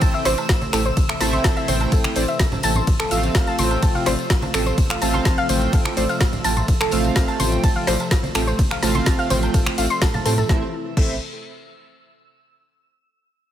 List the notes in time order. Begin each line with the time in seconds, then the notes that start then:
Already playing: C3 E3 A3 C4 E4 C5 G5 E6
0.01 A1 A5 A6, kick, closed hi-hat, ride, tambourine, high woodblock
0.14 E5 E6, tambourine, high conga
0.25 A1 A3 C4 E4 C5 D5 C6, snare, open hi-hat, tambourine
0.38 closed hi-hat, tambourine, high woodblock
0.49 A1, kick, snare, closed hi-hat, ride, tambourine
0.62 closed hi-hat, tambourine, high conga
0.73 A1 A3 C4 E4 A4 C5 G5 A5, finger snap, open hi-hat, tambourine, high woodblock
0.85 C5 C6, closed hi-hat, tambourine
0.97 A1, kick, closed hi-hat, ride, tambourine, high conga
1.09 E5 E6, finger snap, closed hi-hat, high woodblock
1.20 A1 A3 C4 E4 C5 E5 A5 A6, snare, open hi-hat, tambourine
1.33 C6, closed hi-hat, tambourine, high conga
1.44 A1 A5 A6, kick, snare, closed hi-hat, ride, tambourine, high woodblock
1.57 E5 E6, closed hi-hat, tambourine
1.68 A1 A3 C4 E4 C5 G5 C6, open hi-hat, tambourine, high conga
1.80 closed hi-hat, tambourine, high woodblock
1.92 A1 A4 A5, kick, closed hi-hat, ride, tambourine
2.04 finger snap, tambourine, high conga
2.15 A1 A3 C4 E4 C5 D5 C6, open hi-hat, tambourine, high woodblock
2.28 E5 E6, closed hi-hat, tambourine
2.39 A1, kick, snare, closed hi-hat, ride, tambourine, low conga
2.52 closed hi-hat, tambourine, high conga, low conga, high woodblock
2.63 A1 A3 C4 E4 C5 G5 A5 A6, open hi-hat, tambourine
2.75 C6, closed hi-hat, tambourine, low conga
2.87 A1 F3 A3 F4, kick, closed hi-hat, ride, tambourine, high conga
2.99 A4 A5, finger snap, closed hi-hat, tambourine, high woodblock
3.11 A1 A3 C4 F4 C5 F5 E6, open hi-hat, tambourine
3.23 closed hi-hat, tambourine, high conga
3.35 A1 F5 F6, kick, snare, closed hi-hat, ride, tambourine, high woodblock
3.47 A5 A6, closed hi-hat, tambourine
3.58 A1 A3 C4 F4 C5 G5 C6, open hi-hat, tambourine, high conga
3.71 closed hi-hat, tambourine, high woodblock
3.82 A1 A5 A6, kick, closed hi-hat, ride, tambourine
3.95 F5 F6, tambourine, high conga
4.06 A1 A3 C4 F4 C5 D5 C6, snare, open hi-hat, tambourine, high woodblock
4.19 closed hi-hat, tambourine
4.30 A1, kick, snare, closed hi-hat, ride, tambourine
4.42 closed hi-hat, tambourine, high conga, high woodblock
4.54 A1 A3 C4 F4 A4 C5 G5 A5, finger snap, open hi-hat, tambourine
4.66 C5 C6, closed hi-hat, tambourine
4.78 A1, kick, closed hi-hat, ride, tambourine, high conga, high woodblock
4.90 F5 F6, finger snap, closed hi-hat
5.02 A1 A3 C4 F4 C5 F5 A5 A6, open hi-hat, tambourine
5.13 C6, closed hi-hat, tambourine, high conga, high woodblock
5.25 A1 A5 A6, kick, snare, closed hi-hat, ride, tambourine
5.38 F5 F6, closed hi-hat, tambourine
5.49 A1 A3 C4 F4 C5 G5 C6, open hi-hat, tambourine, high conga, high woodblock
5.61 closed hi-hat, tambourine
5.73 A1 A4 A5, kick, closed hi-hat, ride, tambourine
5.85 finger snap, high conga, high woodblock
5.97 A1 A3 C4 F4 C5 D5 C6, open hi-hat, tambourine
6.09 F5 F6, closed hi-hat, tambourine
6.21 A1, kick, snare, closed hi-hat, ride, tambourine, low conga, high woodblock
6.33 closed hi-hat, tambourine, high conga, low conga
6.44 A1 A3 C4 F4 C5 G5 A5 A6, open hi-hat, tambourine
6.56 C6, closed hi-hat, tambourine, low conga, high woodblock
6.68 A1, kick, closed hi-hat, ride, tambourine, high conga
6.81 A4 A5, finger snap, closed hi-hat
6.91 A1 A3 C4 F4 C5 F5 E6, open hi-hat, tambourine, high woodblock
7.05 closed hi-hat, tambourine, high conga
7.16 A1 F5 F6, kick, snare, closed hi-hat, ride, tambourine
7.28 A5 A6, closed hi-hat, tambourine, high woodblock
7.40 A1 A3 C4 F4 C5 G5 C6, open hi-hat, tambourine, high conga
7.52 closed hi-hat, tambourine
7.63 A1 A5 A6, kick, closed hi-hat, ride, tambourine, high woodblock
7.75 F5 F6, tambourine, high conga
7.87 A1 A3 C4 F4 C5 D5 C6, snare, open hi-hat, tambourine
8.00 closed hi-hat, tambourine, high woodblock
8.11 A1, kick, snare, closed hi-hat, ride, tambourine
8.23 closed hi-hat, tambourine, high conga
8.35 A1 A3 C4 F4 A4 C5 G5 A5, finger snap, open hi-hat, tambourine, high woodblock
8.47 C5 C6, closed hi-hat, tambourine
8.59 A1, kick, closed hi-hat, ride, tambourine, high conga
8.71 F5 F6, finger snap, closed hi-hat, high woodblock
8.83 A1 A3 C4 F4 C5 F5 A5 A6, snare, open hi-hat, tambourine
8.95 C6, closed hi-hat, tambourine, high conga
9.06 A1 A5 A6, kick, snare, closed hi-hat, ride, tambourine, high woodblock
9.19 F5 F6, closed hi-hat, tambourine
9.30 A1 A3 C4 F4 C5 G5 C6, open hi-hat, tambourine, high conga
9.43 closed hi-hat, tambourine, high woodblock
9.54 A1 A4 A5, kick, closed hi-hat, ride, tambourine
9.66 finger snap, high conga
9.78 A1 A3 C4 F4 C5 D5 F5 F6, open hi-hat, tambourine, high woodblock
9.90 C6, closed hi-hat, tambourine
10.02 A1 A4 A5, kick, snare, closed hi-hat, ride, tambourine, low conga
10.14 A5 A6, closed hi-hat, tambourine, high conga, low conga, high woodblock
10.25 A2 A3 C4 F4 A4 C5 G5 A5, open hi-hat, tambourine
10.38 A4 A5, tambourine, low conga
10.49 A1 C3 E3 A3 C4 E4 A4 C5 E5, kick, snare
10.97 A1 A3 C4 E4 A4 C5 E5, kick, crash